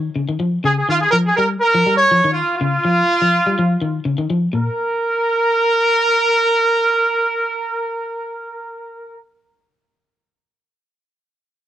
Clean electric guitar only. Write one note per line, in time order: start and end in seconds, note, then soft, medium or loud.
0.16 0.25 C#3 medium
0.29 0.37 D#3 medium
0.40 0.58 F3 medium
0.64 0.82 C#3 loud
0.89 1.06 D#3 medium
1.13 1.31 F3 medium
1.38 1.56 G3 medium
1.75 1.83 F3 medium
1.86 2.04 G3 medium
2.11 2.21 F3 medium
2.24 2.42 D#3 medium
2.61 2.78 C#3 loud
2.85 3.02 F3 medium
3.22 3.39 F3 medium
3.46 3.54 G3 medium
3.59 3.76 F3 loud
3.82 3.99 D#3 medium
4.05 4.15 C#3 medium
4.18 4.26 D#3 medium
4.30 4.48 F3 medium
4.53 4.68 A#2 medium